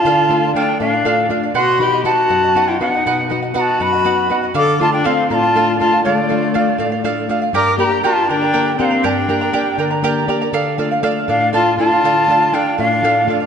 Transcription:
Already playing: A3 D4 F4 A5
0.05 D3 A4 D5 F5
0.29 A3 D4 F4 A4 D5 F5
0.44 D5 F5
0.54 A3 D4 F4 A4 D5 F5 G5
0.80 A2 D4 A4 D5 F5
0.93 D5 F5
1.05 A3 D4 F4 A4 D5 F5
1.29 A3 D4 F4 A4 D5 F5
1.43 D5 F5
1.54 B2 F#4 B4 D#5 F#5 C6
1.79 B3 D#4 F#4 G4 B4 D#5 F#5 B5
1.93 D#5 F#5
2.04 B3 D#4 F#4 B4 D#5 F#5 A5
2.08 F#4
2.29 F#2 B4 D#5 F#5
2.43 D#5 F#5
2.55 B3 D#4 F#4 B4 D#5 F#5
2.68 F4 G5
2.80 B3 D#4 F#4 B4 D#5 F#5
2.94 D#5 F#5
3.06 B2 B4 D#5 F#5
3.29 B3 D#4 F#4 B4 D#5 F#5
3.42 D#5 F#5
3.54 B3 D#4 F#4 B4 D#5 F#5 A#5
3.59 F#4 A5
3.80 F#2 F#4 B4 D#5 F#5 B5
3.93 D#5 F#5
4.04 B3 D#4 F#4 B4 D#5 F#5
4.30 B3 D#4 F#4 B4 D#5 F#5
4.43 D#5 F#5
4.54 D3 A4 D5 F5 D6
4.58 A4
4.79 A3 D4 F4 A4 D5 F5 A5
4.92 D4 D5 F5 G5
5.04 A3 C4 D4 F4 A4 D5 F5
5.30 A2 F4 A4 D5 F5 A#5
5.35 A5
5.43 D5 F5
5.55 A3 D4 F4 A4 D5 F5
5.80 A3 D4 F4 A4 D5 F5 A5
5.92 D5 F5
6.04 D3 A3 A4 D5 F5
6.29 A3 D4 F4 A4 D5 F5
6.42 D5 F5
6.54 A3 D4 F4 A4 D5 F5
6.78 A2 A4 D5 F5
6.92 D5 F5
7.04 A3 D4 F4 A4 D5 F5
7.29 A3 D4 F4 A4 D5 F5
7.42 D5 F5
7.53 G2 G4 A#4 D5 G5 A#5 D6
7.78 A#3 D4 G4 A#4 D5 G5 A#5 B5
7.84 A#5
7.91 A#4 D5 A#5
8.04 A#3 D4 F4 G4 A#4 D5 G5 A5 A#5
8.29 D3 D4 A#4 D5 G5 A#5
8.42 A#4 D5 A#5
8.53 A#3 D4 G4 A#4 D5 G5 A#5
8.78 A#3 C4 D4 G4 A#4 D5 F#5 G5 A#5
8.85 F5
8.91 A#4 D5 A#5
9.03 G2 D4 G4 A#4 D5 G5 A5 A#5
9.09 G5
9.28 A#3 D4 G4 A#4 D5 G5 A#5
9.41 A#4 D5 A#5
9.53 A#3 D4 G4 A#4 D5 G5 A#5
9.78 D3 A#4 D5 G5 A#5
9.91 A#4 D5 A#5
10.03 A#3 D4 G4 A#4 D5 G5 A#5
10.27 A#3 D4 G4 A#4 D5 G5 A#5
10.41 A#4 D5 A#5
10.53 D3 A4 D5 F5
10.78 A3 D4 F4 A4 D5 F5
10.91 D5 F5
11.03 A3 D4 F4 A4 D5 F5
11.28 A2 D4 A4 D5 F5
11.40 D5 F5
11.53 A3 D4 F4 A4 D5 F5 A5
11.77 A3 D4 F4 A4 D5 F5 A5
11.92 D5 F5
12.03 D3 A4 D5 F5
12.28 A3 D4 F4 A4 D5 F5
12.40 D5 F5
12.52 A3 D4 F4 A4 D5 F5 G5
12.78 A2 D4 A4 D5 F5
12.91 D5 F5
13.03 A3 D4 F4 A4 D5 F5
13.27 A3 D4 F4 A4 D5 F5
13.40 D5 F5

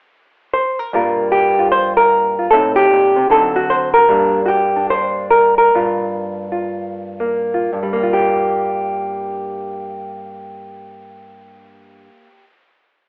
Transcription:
0.54 C5
0.79 A#4
0.93 G2 G3 A#3 F4 A#4
1.32 G4
1.59 F4
1.72 C5
1.97 A#4
2.39 F4
2.51 A2 A3 C4 D#4 A4
2.76 G4
2.91 A#2
3.16 C3
3.30 D3 F#3 C4 D#4 A4
3.56 F#4
3.70 C5
3.94 A#4
4.09 G2 G3 A#3 D4
4.46 F#4 G4
4.76 D4
4.90 C5
5.30 A#4
5.58 A#4
5.75 G2 F4
6.52 F4
7.20 A#3
7.54 F4
7.73 G2
7.83 G3
7.93 A#3
8.03 F4
8.13 G4

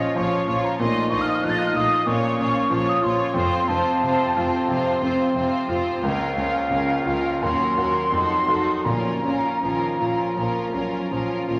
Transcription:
Already playing: A#2 F3 C#4 F4 C#5 D#5
0.15 A#1 A#2 F3 F4 C#5 C#6
0.48 A#1 A#2 F3 F4 C#5
0.64 A#5
0.79 A#1 A#2 F3 A3 D#4 F4 D#5 C6
1.09 A#1 A#2 D#4 D#5 C#6
1.13 A3 F4
1.21 F6
1.28 D#6
1.35 F6
1.43 A#1 A#2 F3 A3 F4 D#5 F#6
1.49 A6
1.58 F#6
1.67 F6
1.75 A#1 A#2 A3 F4 D#5 D#6
2.06 A#1 A#2 F3 A#3 C#4 F4 C#5 C#6
2.37 A#1 A#2 A#3 C#4 F4 C#5
2.70 A#1 A#2 F3 A#3 F4 C#5
2.89 D#6
3.02 A#1 A#2 A#3 F4 C#5 C6
3.19 C#6
3.34 F1 F2 F3 C4 F4 C5 C6
3.68 F1 F2 C4 F4 C5 A5
4.02 F1 F2 C3 C4 F4 C5
4.36 F1 F2 C4 F4 C5
4.68 F1 F2 C3 C4 F4 C5
5.02 F1 F2 C4 F4 C5
5.35 F1 F2 C3 C4 F4 C5
5.69 F1 F2 C4 F4 C5
6.02 C#2 F3 A#3 C#4 F4 A#4 F5
6.36 C#2 C#4 F4 A#4
6.70 C#2 C#3 C#4 F4 A#4
7.05 C#2 C#4 F4 A#4
7.42 D#2 F#3 C#4 F#4 A#4 C6
7.77 D#2 C#4 F#4 A#4
8.11 F1 F2 F#3 D#4 F#4 A4
8.47 F1 F2 D#4 F#4 A4
8.84 A#1 A#2 F3 C#4 F4 A#4 A#5
9.23 A#1 A#2 C#4 F4 A#4
9.62 A#1 A#2 D#3 F3 C#4 F4 A#4
9.99 A#1 A#2 F3 C#4 F4 A#4
10.36 A#1 A#2 F3 A#3 C#4 F4 A#4
10.73 A#1 A#2 F#3 C#4 F4 A#4
11.11 A#1 A#2 F3 C#4 F4 A#4
11.48 A#1 A#2 D#3 C#4 F4 A#4

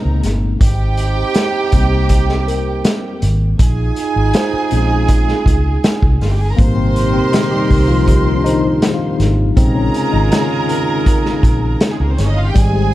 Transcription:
Already playing: A#2 C3 G#3 A#3 C4 C#4 D#4 A#4 C5 A#5
0.05 C#2
0.23 G1, snare, closed hi-hat
0.61 G#1 C4 D#4 G4 G5, kick, closed hi-hat
0.97 closed hi-hat
1.34 snare, closed hi-hat
1.72 C2 G3 A#3 C4, kick, closed hi-hat
2.09 kick, closed hi-hat
2.29 snare
2.47 A#4, closed hi-hat
2.84 snare, closed hi-hat
3.22 G#1, closed hi-hat
3.59 A#1 D#4 F4 G#4 G#5, kick, closed hi-hat
3.96 closed hi-hat
4.16 G#1
4.33 C5, snare, closed hi-hat
4.53 muted fingered electric bass stroke
4.71 A#1 G#3 C4 C#4 D#4, closed hi-hat
5.08 kick, closed hi-hat
5.28 snare
5.46 C#2, kick, closed hi-hat
5.84 snare, closed hi-hat
6.02 C2, kick
6.21 G1 F4 F5, snare, open hi-hat
6.30 G4 G5
6.39 G#4 G#5
6.49 A#4 A#5
6.56 G#1 A#2 G3 A#3 C4 D#4 G4 A#4 C5 C6, kick, closed hi-hat
6.76 C3 C4
6.96 closed hi-hat
7.13 C3 C4
7.32 D#3 D#4, snare, closed hi-hat
7.51 G3 G4
7.70 C2, kick, open hi-hat
7.88 F3 F4
8.07 kick, closed hi-hat
8.37 D4
8.44 D#3 D#4 C5, closed hi-hat
8.68 D#5
8.82 snare, closed hi-hat
8.93 F5
9.20 G#1, snare, closed hi-hat
9.57 A#1 C3 G#3 C4 C#4 D#4 F4 G#4 A#4 A#5, kick, closed hi-hat
9.75 C#3 C#4
9.94 D#4, closed hi-hat
10.13 G#1 D#3 D#4
10.31 C#3 C#4, snare, closed hi-hat
10.69 closed hi-hat
11.06 C#4, kick, closed hi-hat
11.25 snare
11.43 A#1, kick, closed hi-hat
11.80 snare, closed hi-hat
11.91 G#3 G#4
12.00 C#2 A#3 A#4
12.10 C4 C5
12.18 G1 C#4 C#5, snare, closed hi-hat
12.27 D#4 D#5
12.37 F4 F5
12.47 G4 G5
12.54 G#1 G3 C4 D#4 G4 G#4 G#5, kick, closed hi-hat
12.73 G#3 G#4

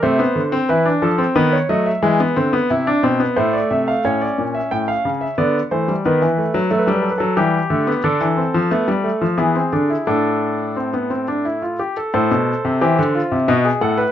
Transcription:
0.03 C3 A3 C5
0.19 B3
0.35 D3
0.52 C4
0.69 E3 E4 B4
0.86 D4
1.02 F3 A4
1.18 C4
1.35 D#3 B3 B4
1.53 C#5
1.69 F#3 A3 D#5
1.86 E5
2.02 E3 G#3
2.20 B3
2.36 D3 C4
2.53 B3
2.70 C3 E4
2.87 D4
3.03 B2 C4
3.20 B3
3.36 A2 A3 C5
3.53 D5
3.70 C3 E5
3.88 F5
4.05 A2 C#4 C#5
4.21 D5
4.38 A#2
4.55 E5
4.71 A2 G5
4.88 F5
5.05 C#3
5.21 E5
5.38 D3 B3 D5
5.71 E3 A3 C5
5.88 G3
6.05 D#3 B3 B4
6.22 E3
6.38 A3
6.54 F#3
6.71 F#3 A3 A4
6.79 B4
6.87 G3 A4
6.95 B4
7.02 A4
7.10 B4
7.18 F#3 A4
7.37 E3 G3 G4
7.70 D3 A3
7.87 B3
8.04 D3 D4 A4
8.21 E3
8.37 C4
8.54 F3
8.71 A3 B3
8.88 G3
9.04 A3
9.21 F3
9.38 E3 B3 G#4
9.55 C4
9.73 D3 D4
9.90 E4
10.07 A2 D4 A4
10.76 C4
10.93 B3
11.10 C4
11.28 D4
11.45 E4
11.62 F4
11.79 G4
11.97 A4
12.14 A2 A4 C5
12.31 B2
12.65 C3
12.81 E3 G4 C5
12.99 D3
13.15 F4
13.32 C3
13.48 B2 F#4 D#5
13.65 G#4
13.81 A2 A4 F#5
13.98 B4

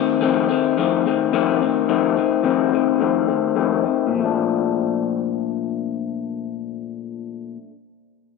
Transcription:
Already playing: D#3 A3 C4
0.21 F2 D#3 A3 C4
0.49 D#3 A3 C4
0.78 F2 D#3 A3 C4
1.06 D#3 A3 C4
1.33 F2 D#3 A3 C4
1.60 D#3 A3 C4
1.89 F2 D#3 A3 C4
2.16 D#3 A3 C4
2.43 F2 D#3 A3 C4
2.72 D#3 A3 C4
3.00 F2 D#3 A3 C4
3.27 D#3 A3 C4
3.56 F2 D#3 A3 C4
3.83 D#3 A3 C4
4.07 A#2
4.14 F3
4.20 A3
4.25 D4

